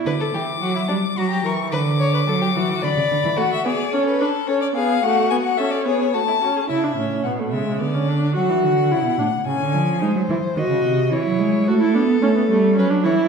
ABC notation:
X:1
M:3/4
L:1/16
Q:1/4=109
K:Bm
V:1 name="Violin"
d'8 ^a2 c'2 | d'8 b4 | f e d2 c B A2 c d ^e2 | f2 ^g f e d c2 a4 |
e4 f2 e2 d4 | f8 ^g4 | z12 | z12 |]
V:2 name="Violin"
B A G2 F E D2 F G ^A2 | B2 c B A G F2 d4 | F2 ^G2 A2 B2 A2 G2 | F4 A2 ^G2 F E F G |
z12 | z12 | ^B4 ^d4 c4 | A8 B2 c2 |]
V:3 name="Viola"
z12 | z12 | A,2 B,2 C2 D2 C2 B,2 | A,2 B,2 C2 B,2 A,2 C2 |
E D C2 B, A, ^G,2 B, C D2 | F4 E2 D2 C4 | ^D2 E2 F4 E4 | F E D2 C B, A,2 C D E2 |]
V:4 name="Cello" clef=bass
D,2 E,2 F,2 G,2 F,2 E,2 | D,4 F,2 E,2 D, C, D, E, | z12 | z12 |
C,2 A,,2 B,,2 C,2 D,4 | F, E, D,2 C, B,, A,,2 C, D, ^E,2 | ^G, F, E,2 ^D, C, ^B,,2 E, F, G,2 | A,2 B,2 A,2 G,2 F,2 E,2 |]